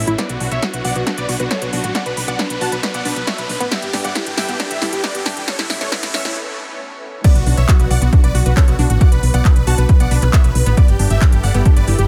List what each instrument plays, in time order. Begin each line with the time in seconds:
Already playing: analog synth pad A3 B3 C#4, riser
0.07 fm bass A1, synth pluck E4, grand piano E4, supersaw synth E4, closed hi-hat
0.18 analog synth pad F#3 D4, synth pluck B3, supersaw synth B4 D5, grand piano D5, kick, snare, closed hi-hat
0.29 fm bass B1, grand piano F#4, supersaw synth F#4, closed hi-hat
0.40 fm bass B1, synth pluck D4, grand piano F#4, supersaw synth F#4, open hi-hat
0.52 fm bass B1, supersaw synth C#5 E5, grand piano E5, closed hi-hat
0.63 grand piano F#4, synth pluck F#4, supersaw synth F#4, kick, snare, closed hi-hat
0.74 fm bass B1, grand piano F#4, supersaw synth F#4, synth pluck B4, closed hi-hat
0.85 fm bass B1, supersaw synth D5 F#5, grand piano F#5, open hi-hat
0.96 fm bass B1, synth pluck B3, grand piano F#4, supersaw synth F#4, closed hi-hat
1.07 synth pluck D4, supersaw synth F#4, kick, snare, closed hi-hat
1.18 fm bass B1, supersaw synth B4 D5, grand piano D5, closed hi-hat
1.29 fm bass B1, grand piano F#4, synth pluck F#4, supersaw synth F#4, open hi-hat
1.40 fm bass B1, grand piano F#4, supersaw synth F#4, synth pluck B4, closed hi-hat
1.51 supersaw synth A4 C#5, grand piano C#5, kick, snare, closed hi-hat
1.62 fm bass B1, synth pluck B3, supersaw synth F#4, grand piano F#4, closed hi-hat
1.73 fm bass B1, synth pluck D4, supersaw synth F#4, grand piano F#4, open hi-hat
1.84 fm bass A1, supersaw synth F#4, grand piano F#4, closed hi-hat
1.95 synth pluck F#4, supersaw synth D5 F#5, grand piano F#5, kick, snare, closed hi-hat
2.06 fm bass B1, grand piano B4, synth pluck B4, supersaw synth B4, closed hi-hat
2.17 fm bass B1, grand piano B4, supersaw synth B4, open hi-hat
2.28 fm bass B1, synth pluck B3, supersaw synth D5 F#5, grand piano F#5, closed hi-hat
2.39 synth pluck D4, grand piano B4, supersaw synth B4, kick, snare, closed hi-hat
2.50 fm bass B1, grand piano B4, supersaw synth B4, closed hi-hat
2.61 fm bass B1, synth pluck F#4, supersaw synth F#5 A5, grand piano A5, open hi-hat
2.72 fm bass B1, synth pluck B4, grand piano B4, supersaw synth B4, closed hi-hat
2.83 grand piano B4, supersaw synth B4, kick, snare, closed hi-hat
2.94 fm bass B1, synth pluck B3, supersaw synth D5 F#5, grand piano F#5, closed hi-hat
3.05 fm bass B1, synth pluck D4, supersaw synth B4, grand piano B4, open hi-hat
3.16 fm bass B1, grand piano B4, supersaw synth B4, closed hi-hat
3.27 synth pluck F#4, supersaw synth C#5 E5, grand piano E5, kick, snare, closed hi-hat
3.38 fm bass B1, synth pluck B4, grand piano B4, supersaw synth B4, closed hi-hat
3.49 fm bass B1, grand piano B4, supersaw synth B4, open hi-hat
3.60 fm bass A1, synth pluck B3, grand piano B4, supersaw synth B4, closed hi-hat
3.71 analog synth pad G3 E4 A4 B4, synth pluck B3, supersaw synth G4 E5, grand piano E5, kick, snare, closed hi-hat
3.82 fm bass G1, grand piano G4, supersaw synth G4, closed hi-hat
3.93 fm bass G1, synth pluck D4, supersaw synth G4, grand piano G4, snare, open hi-hat
4.04 fm bass G1, supersaw synth D5 F#5, grand piano F#5, closed hi-hat
4.15 synth pluck E4, supersaw synth G4, grand piano G4, kick, snare, closed hi-hat
4.26 fm bass G1, supersaw synth G4, synth pluck G4, grand piano G4, closed hi-hat
4.37 fm bass G1, supersaw synth E5 G5, grand piano G5, snare, open hi-hat
4.49 fm bass G1, synth pluck B3, supersaw synth G4, grand piano G4, closed hi-hat
4.60 synth pluck D4, supersaw synth G4, grand piano G4, kick, snare, closed hi-hat
4.71 fm bass G1, supersaw synth G4 E5, grand piano E5, closed hi-hat
4.82 fm bass G1, synth pluck E4, grand piano G4, supersaw synth G4, snare, open hi-hat
4.93 fm bass G1, supersaw synth G4, synth pluck G4, grand piano G4, closed hi-hat
5.04 supersaw synth B4 D5, grand piano D5, kick, snare, closed hi-hat
5.15 fm bass G1, synth pluck B3, grand piano G4, supersaw synth G4, closed hi-hat
5.26 fm bass G1, synth pluck D4, supersaw synth G4, snare, open hi-hat
5.37 fm bass E1, grand piano G4, supersaw synth G4, closed hi-hat
5.48 analog synth pad A3 B3 C#4, synth pluck C#4, supersaw synth A4 C#5, grand piano C#5, kick, snare, closed hi-hat
5.59 fm bass A1, grand piano E4, supersaw synth E4, synth pluck E4, snare, closed hi-hat
5.70 fm bass A1, grand piano E4, supersaw synth E4, snare, open hi-hat
5.81 fm bass A1, synth pluck A3, supersaw synth A4 C#5, grand piano C#5, snare, closed hi-hat
5.92 synth pluck B3, grand piano E4, supersaw synth E4, kick, snare, closed hi-hat
6.03 fm bass A1, supersaw synth E4, grand piano E4, snare, closed hi-hat
6.14 fm bass A1, synth pluck C#4, supersaw synth C#5 E5, grand piano E5, snare, open hi-hat
6.25 fm bass A1, grand piano E4, synth pluck E4, supersaw synth E4, snare, closed hi-hat
7.24 analog synth pad F#3 B3 D4, synth pluck B3, supersaw synth B4 D5, grand piano D5, kick, closed hi-hat, crash
7.35 fm bass B1, grand piano F#4, supersaw synth F#4, closed hi-hat
7.46 fm bass B1, synth pluck D4, grand piano F#4, supersaw synth F#4, open hi-hat
7.57 fm bass B1, supersaw synth C#5 E5, grand piano E5, closed hi-hat
7.68 grand piano F#4, synth pluck F#4, supersaw synth F#4, kick, clap, closed hi-hat
7.80 fm bass B1, grand piano F#4, supersaw synth F#4, synth pluck B4, closed hi-hat
7.91 fm bass B1, supersaw synth D5 F#5, grand piano F#5, open hi-hat
8.02 fm bass B1, synth pluck B3, supersaw synth F#4, grand piano F#4, closed hi-hat
8.13 synth pluck D4, supersaw synth F#4, grand piano F#4, kick, closed hi-hat
8.24 fm bass B1, supersaw synth B4 D5, grand piano D5, closed hi-hat
8.35 fm bass B1, supersaw synth F#4, synth pluck F#4, grand piano F#4, open hi-hat
8.46 fm bass B1, supersaw synth F#4, grand piano F#4, synth pluck B4, closed hi-hat
8.57 supersaw synth A4 C#5, grand piano C#5, kick, clap, closed hi-hat
8.68 fm bass B1, synth pluck B3, grand piano F#4, supersaw synth F#4, closed hi-hat
8.79 fm bass B1, synth pluck D4, supersaw synth F#4, grand piano F#4, open hi-hat
8.90 fm bass A1, supersaw synth F#4, grand piano F#4, closed hi-hat
9.01 synth pluck F#4, supersaw synth D5 F#5, grand piano F#5, kick, closed hi-hat
9.12 fm bass B1, supersaw synth B4, synth pluck B4, grand piano B4, closed hi-hat
9.23 fm bass B1, supersaw synth B4, grand piano B4, open hi-hat
9.34 fm bass B1, synth pluck B3, supersaw synth D5 F#5, grand piano F#5, closed hi-hat
9.45 synth pluck D4, supersaw synth B4, grand piano B4, kick, clap, closed hi-hat
9.56 fm bass B1, supersaw synth B4, grand piano B4, closed hi-hat
9.67 fm bass B1, synth pluck F#4, supersaw synth F#5 A5, grand piano A5, open hi-hat
9.78 fm bass B1, supersaw synth B4, synth pluck B4, grand piano B4, closed hi-hat
9.89 supersaw synth B4, grand piano B4, kick, closed hi-hat
10.00 fm bass B1, synth pluck B3, supersaw synth D5 F#5, grand piano F#5, closed hi-hat
10.11 fm bass B1, synth pluck D4, supersaw synth B4, grand piano B4, open hi-hat
10.22 fm bass B1, supersaw synth B4, grand piano B4, clap, closed hi-hat
10.33 synth pluck F#4, supersaw synth C#5 E5, grand piano E5, kick, clap, closed hi-hat
10.44 fm bass B1, supersaw synth B4, synth pluck B4, grand piano B4, closed hi-hat
10.55 fm bass B1, supersaw synth B4, grand piano B4, open hi-hat
10.66 fm bass A1, synth pluck B3, supersaw synth B4, grand piano B4, closed hi-hat
10.77 analog synth pad G3 E4 A4 B4, synth pluck B3, supersaw synth B4 D5, grand piano D5, kick, closed hi-hat
10.88 fm bass G1, supersaw synth G4, grand piano G4, closed hi-hat
10.99 fm bass G1, synth pluck D4, supersaw synth G4, grand piano G4, open hi-hat
11.10 fm bass G1, supersaw synth G4 E5, grand piano E5, closed hi-hat
11.21 synth pluck E4, supersaw synth G4, grand piano G4, kick, clap, closed hi-hat
11.32 fm bass G1, synth pluck G4, grand piano G4, supersaw synth G4, closed hi-hat
11.43 fm bass G1, supersaw synth D5 F#5, grand piano F#5, open hi-hat
11.54 fm bass G1, synth pluck B3, supersaw synth G4, grand piano G4, closed hi-hat
11.65 synth pluck D4, supersaw synth G4, grand piano G4, kick, closed hi-hat
11.77 fm bass G1, supersaw synth B4 D5, grand piano D5, closed hi-hat
11.88 fm bass G1, synth pluck E4, grand piano G4, supersaw synth G4, open hi-hat
11.99 fm bass G1, supersaw synth G4, grand piano G4, synth pluck G4, closed hi-hat